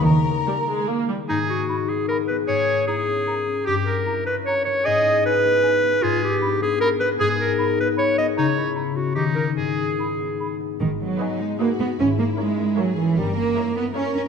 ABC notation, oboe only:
X:1
M:3/4
L:1/8
Q:1/4=152
K:G#m
V:1 name="Oboe"
z6 | G2 z4 | G2 z4 | =G2 z4 |
G2 z4 | G2 z4 | G2 z4 | c2 z2 D2 |
G2 z4 | z6 | z6 | z6 |]